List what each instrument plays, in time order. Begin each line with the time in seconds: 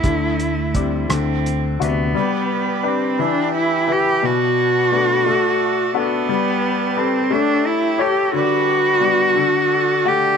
Already playing: cello E4
0.03 fretless electric bass D2, upright piano D3, cello A3, kick, closed hi-hat
0.40 closed hi-hat
0.75 cello G3, upright piano C4 D4 G4, kick, closed hi-hat
1.09 fretless electric bass D2, upright piano D3, cello C4, cross-stick, closed hi-hat
1.46 closed hi-hat
1.79 fretless electric bass D2, upright piano C3 D4 F#4, cello B3, closed hi-hat
2.14 upright piano G3, harmonium G4 B4 D5 B5
2.83 upright piano D4 G4 B4
2.88 cello C4
3.19 upright piano E3, cello D4, harmonium G4 E5
3.56 cello E4
3.87 upright piano E4 G4 B4
3.92 cello G4
4.23 upright piano B2, harmonium F#4 D5 A5, cello F#4
4.92 upright piano A3 B3 D4
5.26 upright piano A3, harmonium A3 A4
5.94 cello B3, upright piano D4 F#4 A4
6.29 upright piano G3, harmonium G4 B4
6.96 cello C4, upright piano G4 A4 B4
7.31 upright piano A3, cello D4, harmonium C#5 E5
7.67 cello E4
7.98 upright piano G4 A4 C#5, cello G4
8.33 upright piano D3, harmonium G3 D4 B4 D5 B5, cello F#4
9.00 upright piano G3 B3 D4
9.36 upright piano D3, harmonium A4 D5 F#5 A5
10.05 upright piano A3 D4 F#5, cello G4